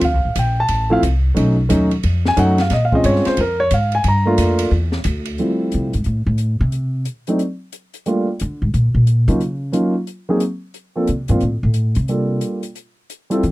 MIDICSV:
0, 0, Header, 1, 5, 480
1, 0, Start_track
1, 0, Tempo, 335196
1, 29, Time_signature, 4, 2, 24, 8
1, 19355, End_track
2, 0, Start_track
2, 0, Title_t, "Grand piano"
2, 0, Program_c, 0, 0
2, 66, Note_on_c, 0, 77, 80
2, 496, Note_off_c, 0, 77, 0
2, 560, Note_on_c, 0, 79, 76
2, 834, Note_off_c, 0, 79, 0
2, 860, Note_on_c, 0, 81, 101
2, 1287, Note_off_c, 0, 81, 0
2, 1290, Note_on_c, 0, 53, 73
2, 1290, Note_on_c, 0, 57, 68
2, 1304, Note_on_c, 0, 64, 83
2, 1307, Note_on_c, 0, 60, 65
2, 1326, Note_on_c, 0, 77, 101
2, 1421, Note_off_c, 0, 77, 0
2, 1449, Note_off_c, 0, 53, 0
2, 1450, Note_off_c, 0, 57, 0
2, 1456, Note_off_c, 0, 64, 0
2, 1458, Note_off_c, 0, 60, 0
2, 1926, Note_on_c, 0, 54, 59
2, 1939, Note_on_c, 0, 57, 50
2, 1942, Note_on_c, 0, 61, 56
2, 1950, Note_on_c, 0, 63, 60
2, 2216, Note_off_c, 0, 54, 0
2, 2222, Note_off_c, 0, 57, 0
2, 2224, Note_off_c, 0, 61, 0
2, 2228, Note_off_c, 0, 63, 0
2, 2419, Note_on_c, 0, 57, 58
2, 2422, Note_on_c, 0, 54, 68
2, 2429, Note_on_c, 0, 61, 63
2, 2431, Note_on_c, 0, 63, 73
2, 2702, Note_off_c, 0, 57, 0
2, 2704, Note_off_c, 0, 54, 0
2, 2707, Note_off_c, 0, 61, 0
2, 2708, Note_off_c, 0, 63, 0
2, 3265, Note_on_c, 0, 80, 104
2, 3387, Note_on_c, 0, 54, 71
2, 3393, Note_on_c, 0, 61, 63
2, 3397, Note_on_c, 0, 57, 65
2, 3404, Note_on_c, 0, 63, 74
2, 3411, Note_off_c, 0, 80, 0
2, 3420, Note_on_c, 0, 78, 93
2, 3667, Note_off_c, 0, 54, 0
2, 3670, Note_off_c, 0, 61, 0
2, 3672, Note_off_c, 0, 57, 0
2, 3675, Note_off_c, 0, 63, 0
2, 3705, Note_off_c, 0, 78, 0
2, 3738, Note_on_c, 0, 77, 82
2, 3887, Note_off_c, 0, 77, 0
2, 3912, Note_on_c, 0, 75, 79
2, 4049, Note_off_c, 0, 75, 0
2, 4079, Note_on_c, 0, 77, 84
2, 4191, Note_on_c, 0, 60, 59
2, 4192, Note_on_c, 0, 56, 59
2, 4203, Note_on_c, 0, 61, 57
2, 4204, Note_on_c, 0, 65, 69
2, 4213, Note_off_c, 0, 77, 0
2, 4226, Note_on_c, 0, 75, 86
2, 4366, Note_off_c, 0, 75, 0
2, 4376, Note_on_c, 0, 73, 89
2, 4663, Note_off_c, 0, 73, 0
2, 4673, Note_on_c, 0, 72, 85
2, 4804, Note_off_c, 0, 60, 0
2, 4805, Note_off_c, 0, 56, 0
2, 4811, Note_off_c, 0, 61, 0
2, 4811, Note_off_c, 0, 65, 0
2, 4835, Note_off_c, 0, 72, 0
2, 4878, Note_on_c, 0, 70, 75
2, 5154, Note_on_c, 0, 73, 101
2, 5155, Note_off_c, 0, 70, 0
2, 5316, Note_off_c, 0, 73, 0
2, 5353, Note_on_c, 0, 77, 86
2, 5633, Note_off_c, 0, 77, 0
2, 5653, Note_on_c, 0, 80, 89
2, 5805, Note_off_c, 0, 80, 0
2, 5845, Note_on_c, 0, 82, 91
2, 6093, Note_on_c, 0, 57, 63
2, 6112, Note_on_c, 0, 58, 61
2, 6112, Note_on_c, 0, 62, 61
2, 6115, Note_on_c, 0, 65, 79
2, 6554, Note_off_c, 0, 82, 0
2, 6716, Note_off_c, 0, 57, 0
2, 6725, Note_off_c, 0, 58, 0
2, 6725, Note_off_c, 0, 62, 0
2, 6727, Note_off_c, 0, 65, 0
2, 7718, Note_on_c, 0, 53, 45
2, 7721, Note_on_c, 0, 55, 40
2, 7722, Note_on_c, 0, 57, 42
2, 7724, Note_on_c, 0, 60, 43
2, 7733, Note_on_c, 0, 64, 54
2, 8443, Note_off_c, 0, 53, 0
2, 8444, Note_off_c, 0, 55, 0
2, 8445, Note_off_c, 0, 57, 0
2, 8446, Note_off_c, 0, 60, 0
2, 8450, Note_off_c, 0, 64, 0
2, 10422, Note_on_c, 0, 54, 51
2, 10430, Note_on_c, 0, 60, 50
2, 10433, Note_on_c, 0, 57, 47
2, 10435, Note_on_c, 0, 62, 50
2, 10446, Note_on_c, 0, 63, 57
2, 10578, Note_off_c, 0, 54, 0
2, 10582, Note_off_c, 0, 60, 0
2, 10583, Note_off_c, 0, 57, 0
2, 10584, Note_off_c, 0, 62, 0
2, 10590, Note_off_c, 0, 63, 0
2, 11540, Note_on_c, 0, 57, 52
2, 11542, Note_on_c, 0, 55, 50
2, 11555, Note_on_c, 0, 58, 44
2, 11557, Note_on_c, 0, 62, 52
2, 11566, Note_on_c, 0, 65, 59
2, 11824, Note_off_c, 0, 57, 0
2, 11825, Note_off_c, 0, 55, 0
2, 11832, Note_off_c, 0, 58, 0
2, 11833, Note_off_c, 0, 62, 0
2, 11837, Note_off_c, 0, 65, 0
2, 13285, Note_on_c, 0, 54, 55
2, 13293, Note_on_c, 0, 58, 50
2, 13293, Note_on_c, 0, 63, 51
2, 13295, Note_on_c, 0, 61, 47
2, 13295, Note_on_c, 0, 65, 61
2, 13449, Note_off_c, 0, 54, 0
2, 13453, Note_off_c, 0, 58, 0
2, 13453, Note_off_c, 0, 63, 0
2, 13454, Note_off_c, 0, 61, 0
2, 13454, Note_off_c, 0, 65, 0
2, 13925, Note_on_c, 0, 54, 49
2, 13927, Note_on_c, 0, 58, 49
2, 13928, Note_on_c, 0, 61, 49
2, 13941, Note_on_c, 0, 63, 46
2, 13943, Note_on_c, 0, 65, 58
2, 14216, Note_off_c, 0, 54, 0
2, 14217, Note_off_c, 0, 58, 0
2, 14217, Note_off_c, 0, 61, 0
2, 14224, Note_off_c, 0, 63, 0
2, 14225, Note_off_c, 0, 65, 0
2, 14732, Note_on_c, 0, 54, 61
2, 14733, Note_on_c, 0, 58, 55
2, 14743, Note_on_c, 0, 60, 53
2, 14746, Note_on_c, 0, 63, 56
2, 14752, Note_on_c, 0, 68, 70
2, 14892, Note_off_c, 0, 54, 0
2, 14892, Note_off_c, 0, 58, 0
2, 14897, Note_off_c, 0, 60, 0
2, 14899, Note_off_c, 0, 63, 0
2, 14901, Note_off_c, 0, 68, 0
2, 15689, Note_on_c, 0, 53, 56
2, 15695, Note_on_c, 0, 58, 51
2, 15700, Note_on_c, 0, 60, 49
2, 15703, Note_on_c, 0, 62, 48
2, 15705, Note_on_c, 0, 69, 58
2, 15850, Note_off_c, 0, 53, 0
2, 15853, Note_off_c, 0, 58, 0
2, 15855, Note_off_c, 0, 60, 0
2, 15857, Note_off_c, 0, 62, 0
2, 15858, Note_off_c, 0, 69, 0
2, 16173, Note_on_c, 0, 53, 57
2, 16180, Note_on_c, 0, 58, 51
2, 16182, Note_on_c, 0, 62, 51
2, 16186, Note_on_c, 0, 60, 53
2, 16197, Note_on_c, 0, 65, 60
2, 16332, Note_off_c, 0, 53, 0
2, 16335, Note_off_c, 0, 58, 0
2, 16336, Note_off_c, 0, 62, 0
2, 16338, Note_off_c, 0, 60, 0
2, 16343, Note_off_c, 0, 65, 0
2, 17311, Note_on_c, 0, 55, 43
2, 17313, Note_on_c, 0, 58, 41
2, 17314, Note_on_c, 0, 62, 44
2, 17319, Note_on_c, 0, 65, 42
2, 17323, Note_on_c, 0, 69, 50
2, 18036, Note_off_c, 0, 55, 0
2, 18037, Note_off_c, 0, 58, 0
2, 18038, Note_off_c, 0, 62, 0
2, 18040, Note_off_c, 0, 65, 0
2, 18042, Note_off_c, 0, 69, 0
2, 19045, Note_on_c, 0, 55, 58
2, 19055, Note_on_c, 0, 64, 56
2, 19056, Note_on_c, 0, 60, 57
2, 19067, Note_on_c, 0, 65, 53
2, 19070, Note_on_c, 0, 69, 66
2, 19206, Note_off_c, 0, 55, 0
2, 19211, Note_off_c, 0, 64, 0
2, 19212, Note_off_c, 0, 60, 0
2, 19217, Note_off_c, 0, 65, 0
2, 19219, Note_off_c, 0, 69, 0
2, 19355, End_track
3, 0, Start_track
3, 0, Title_t, "Upright bass"
3, 0, Program_c, 1, 32
3, 25, Note_on_c, 1, 38, 80
3, 197, Note_off_c, 1, 38, 0
3, 197, Note_on_c, 1, 36, 52
3, 350, Note_off_c, 1, 36, 0
3, 359, Note_on_c, 1, 33, 63
3, 503, Note_off_c, 1, 33, 0
3, 511, Note_on_c, 1, 34, 82
3, 976, Note_off_c, 1, 34, 0
3, 989, Note_on_c, 1, 33, 82
3, 1456, Note_off_c, 1, 33, 0
3, 1469, Note_on_c, 1, 36, 84
3, 1936, Note_off_c, 1, 36, 0
3, 1956, Note_on_c, 1, 35, 84
3, 2420, Note_off_c, 1, 35, 0
3, 2439, Note_on_c, 1, 39, 75
3, 2902, Note_off_c, 1, 39, 0
3, 2919, Note_on_c, 1, 41, 84
3, 3382, Note_off_c, 1, 41, 0
3, 3393, Note_on_c, 1, 42, 97
3, 3859, Note_off_c, 1, 42, 0
3, 3873, Note_on_c, 1, 46, 82
3, 4339, Note_off_c, 1, 46, 0
3, 4356, Note_on_c, 1, 43, 87
3, 4641, Note_off_c, 1, 43, 0
3, 4838, Note_on_c, 1, 41, 80
3, 5302, Note_off_c, 1, 41, 0
3, 5316, Note_on_c, 1, 44, 94
3, 5781, Note_off_c, 1, 44, 0
3, 5789, Note_on_c, 1, 43, 93
3, 6258, Note_off_c, 1, 43, 0
3, 6271, Note_on_c, 1, 41, 86
3, 6738, Note_off_c, 1, 41, 0
3, 6747, Note_on_c, 1, 40, 89
3, 7217, Note_off_c, 1, 40, 0
3, 7231, Note_on_c, 1, 38, 100
3, 7699, Note_off_c, 1, 38, 0
3, 8223, Note_on_c, 1, 48, 71
3, 8504, Note_off_c, 1, 48, 0
3, 8513, Note_on_c, 1, 44, 67
3, 8671, Note_off_c, 1, 44, 0
3, 8679, Note_on_c, 1, 45, 69
3, 8962, Note_off_c, 1, 45, 0
3, 8971, Note_on_c, 1, 45, 83
3, 9423, Note_off_c, 1, 45, 0
3, 9459, Note_on_c, 1, 48, 90
3, 10068, Note_off_c, 1, 48, 0
3, 12048, Note_on_c, 1, 50, 82
3, 12333, Note_off_c, 1, 50, 0
3, 12341, Note_on_c, 1, 44, 80
3, 12504, Note_off_c, 1, 44, 0
3, 12512, Note_on_c, 1, 46, 77
3, 12801, Note_off_c, 1, 46, 0
3, 12810, Note_on_c, 1, 46, 81
3, 13262, Note_off_c, 1, 46, 0
3, 13285, Note_on_c, 1, 49, 96
3, 13899, Note_off_c, 1, 49, 0
3, 15873, Note_on_c, 1, 48, 68
3, 16160, Note_off_c, 1, 48, 0
3, 16169, Note_on_c, 1, 44, 82
3, 16341, Note_off_c, 1, 44, 0
3, 16359, Note_on_c, 1, 45, 69
3, 16646, Note_off_c, 1, 45, 0
3, 16655, Note_on_c, 1, 45, 79
3, 17103, Note_off_c, 1, 45, 0
3, 17131, Note_on_c, 1, 48, 86
3, 17741, Note_off_c, 1, 48, 0
3, 19239, Note_on_c, 1, 52, 87
3, 19355, Note_off_c, 1, 52, 0
3, 19355, End_track
4, 0, Start_track
4, 0, Title_t, "Muted upright bass strokes"
4, 4672, Note_on_c, 9, 29, 41
4, 4815, Note_off_c, 9, 29, 0
4, 19355, End_track
5, 0, Start_track
5, 0, Title_t, "Drums"
5, 17, Note_on_c, 9, 51, 68
5, 28, Note_on_c, 9, 36, 24
5, 160, Note_off_c, 9, 51, 0
5, 171, Note_off_c, 9, 36, 0
5, 507, Note_on_c, 9, 44, 64
5, 507, Note_on_c, 9, 51, 73
5, 511, Note_on_c, 9, 36, 23
5, 650, Note_off_c, 9, 44, 0
5, 650, Note_off_c, 9, 51, 0
5, 654, Note_off_c, 9, 36, 0
5, 978, Note_on_c, 9, 51, 61
5, 990, Note_on_c, 9, 36, 22
5, 1121, Note_off_c, 9, 51, 0
5, 1133, Note_off_c, 9, 36, 0
5, 1473, Note_on_c, 9, 44, 58
5, 1473, Note_on_c, 9, 51, 63
5, 1474, Note_on_c, 9, 36, 19
5, 1616, Note_off_c, 9, 44, 0
5, 1616, Note_off_c, 9, 51, 0
5, 1617, Note_off_c, 9, 36, 0
5, 1955, Note_on_c, 9, 36, 23
5, 1955, Note_on_c, 9, 51, 59
5, 2098, Note_off_c, 9, 36, 0
5, 2098, Note_off_c, 9, 51, 0
5, 2430, Note_on_c, 9, 44, 62
5, 2430, Note_on_c, 9, 51, 67
5, 2436, Note_on_c, 9, 36, 19
5, 2573, Note_off_c, 9, 44, 0
5, 2573, Note_off_c, 9, 51, 0
5, 2579, Note_off_c, 9, 36, 0
5, 2736, Note_on_c, 9, 51, 49
5, 2879, Note_off_c, 9, 51, 0
5, 2910, Note_on_c, 9, 51, 61
5, 2918, Note_on_c, 9, 36, 20
5, 3053, Note_off_c, 9, 51, 0
5, 3061, Note_off_c, 9, 36, 0
5, 3228, Note_on_c, 9, 38, 62
5, 3372, Note_off_c, 9, 38, 0
5, 3392, Note_on_c, 9, 44, 51
5, 3392, Note_on_c, 9, 51, 66
5, 3396, Note_on_c, 9, 36, 27
5, 3535, Note_off_c, 9, 44, 0
5, 3535, Note_off_c, 9, 51, 0
5, 3539, Note_off_c, 9, 36, 0
5, 3695, Note_on_c, 9, 51, 45
5, 3702, Note_on_c, 9, 38, 45
5, 3838, Note_off_c, 9, 51, 0
5, 3845, Note_off_c, 9, 38, 0
5, 3864, Note_on_c, 9, 51, 58
5, 3871, Note_on_c, 9, 38, 37
5, 3877, Note_on_c, 9, 36, 18
5, 4007, Note_off_c, 9, 51, 0
5, 4014, Note_off_c, 9, 38, 0
5, 4020, Note_off_c, 9, 36, 0
5, 4186, Note_on_c, 9, 36, 56
5, 4329, Note_off_c, 9, 36, 0
5, 4350, Note_on_c, 9, 44, 57
5, 4350, Note_on_c, 9, 51, 72
5, 4357, Note_on_c, 9, 36, 19
5, 4494, Note_off_c, 9, 44, 0
5, 4494, Note_off_c, 9, 51, 0
5, 4500, Note_off_c, 9, 36, 0
5, 4520, Note_on_c, 9, 38, 27
5, 4654, Note_on_c, 9, 51, 51
5, 4663, Note_off_c, 9, 38, 0
5, 4671, Note_on_c, 9, 38, 49
5, 4798, Note_off_c, 9, 51, 0
5, 4814, Note_off_c, 9, 38, 0
5, 4823, Note_on_c, 9, 51, 66
5, 4834, Note_on_c, 9, 36, 25
5, 4966, Note_off_c, 9, 51, 0
5, 4977, Note_off_c, 9, 36, 0
5, 5306, Note_on_c, 9, 44, 61
5, 5306, Note_on_c, 9, 51, 66
5, 5315, Note_on_c, 9, 36, 22
5, 5449, Note_off_c, 9, 44, 0
5, 5449, Note_off_c, 9, 51, 0
5, 5458, Note_off_c, 9, 36, 0
5, 5608, Note_on_c, 9, 51, 46
5, 5751, Note_off_c, 9, 51, 0
5, 5782, Note_on_c, 9, 51, 58
5, 5796, Note_on_c, 9, 36, 20
5, 5925, Note_off_c, 9, 51, 0
5, 5939, Note_off_c, 9, 36, 0
5, 6268, Note_on_c, 9, 44, 57
5, 6268, Note_on_c, 9, 51, 74
5, 6275, Note_on_c, 9, 36, 22
5, 6411, Note_off_c, 9, 44, 0
5, 6411, Note_off_c, 9, 51, 0
5, 6419, Note_off_c, 9, 36, 0
5, 6566, Note_on_c, 9, 51, 78
5, 6710, Note_off_c, 9, 51, 0
5, 6751, Note_on_c, 9, 36, 25
5, 6894, Note_off_c, 9, 36, 0
5, 7046, Note_on_c, 9, 38, 52
5, 7189, Note_off_c, 9, 38, 0
5, 7214, Note_on_c, 9, 44, 56
5, 7214, Note_on_c, 9, 51, 66
5, 7231, Note_on_c, 9, 36, 25
5, 7358, Note_off_c, 9, 44, 0
5, 7358, Note_off_c, 9, 51, 0
5, 7375, Note_off_c, 9, 36, 0
5, 7523, Note_on_c, 9, 51, 50
5, 7666, Note_off_c, 9, 51, 0
5, 7705, Note_on_c, 9, 42, 35
5, 7848, Note_off_c, 9, 42, 0
5, 8184, Note_on_c, 9, 42, 43
5, 8327, Note_off_c, 9, 42, 0
5, 8494, Note_on_c, 9, 42, 41
5, 8638, Note_off_c, 9, 42, 0
5, 8649, Note_on_c, 9, 42, 36
5, 8792, Note_off_c, 9, 42, 0
5, 9132, Note_on_c, 9, 42, 40
5, 9275, Note_off_c, 9, 42, 0
5, 9623, Note_on_c, 9, 42, 35
5, 9766, Note_off_c, 9, 42, 0
5, 10098, Note_on_c, 9, 42, 44
5, 10241, Note_off_c, 9, 42, 0
5, 10410, Note_on_c, 9, 42, 39
5, 10553, Note_off_c, 9, 42, 0
5, 10582, Note_on_c, 9, 42, 39
5, 10725, Note_off_c, 9, 42, 0
5, 11061, Note_on_c, 9, 42, 44
5, 11204, Note_off_c, 9, 42, 0
5, 11363, Note_on_c, 9, 42, 38
5, 11507, Note_off_c, 9, 42, 0
5, 11539, Note_on_c, 9, 42, 35
5, 11682, Note_off_c, 9, 42, 0
5, 12021, Note_on_c, 9, 42, 47
5, 12164, Note_off_c, 9, 42, 0
5, 12512, Note_on_c, 9, 42, 39
5, 12655, Note_off_c, 9, 42, 0
5, 12986, Note_on_c, 9, 42, 44
5, 13129, Note_off_c, 9, 42, 0
5, 13291, Note_on_c, 9, 42, 40
5, 13435, Note_off_c, 9, 42, 0
5, 13466, Note_on_c, 9, 42, 34
5, 13609, Note_off_c, 9, 42, 0
5, 13936, Note_on_c, 9, 42, 47
5, 14079, Note_off_c, 9, 42, 0
5, 14420, Note_on_c, 9, 42, 37
5, 14563, Note_off_c, 9, 42, 0
5, 14894, Note_on_c, 9, 42, 44
5, 15037, Note_off_c, 9, 42, 0
5, 15378, Note_on_c, 9, 42, 37
5, 15521, Note_off_c, 9, 42, 0
5, 15856, Note_on_c, 9, 42, 46
5, 15999, Note_off_c, 9, 42, 0
5, 16153, Note_on_c, 9, 42, 42
5, 16296, Note_off_c, 9, 42, 0
5, 16330, Note_on_c, 9, 42, 38
5, 16473, Note_off_c, 9, 42, 0
5, 16805, Note_on_c, 9, 42, 45
5, 16949, Note_off_c, 9, 42, 0
5, 17111, Note_on_c, 9, 42, 40
5, 17254, Note_off_c, 9, 42, 0
5, 17298, Note_on_c, 9, 42, 34
5, 17441, Note_off_c, 9, 42, 0
5, 17770, Note_on_c, 9, 42, 45
5, 17913, Note_off_c, 9, 42, 0
5, 18082, Note_on_c, 9, 42, 41
5, 18225, Note_off_c, 9, 42, 0
5, 18263, Note_on_c, 9, 42, 42
5, 18406, Note_off_c, 9, 42, 0
5, 18754, Note_on_c, 9, 42, 47
5, 18898, Note_off_c, 9, 42, 0
5, 19057, Note_on_c, 9, 42, 38
5, 19200, Note_off_c, 9, 42, 0
5, 19234, Note_on_c, 9, 42, 37
5, 19355, Note_off_c, 9, 42, 0
5, 19355, End_track
0, 0, End_of_file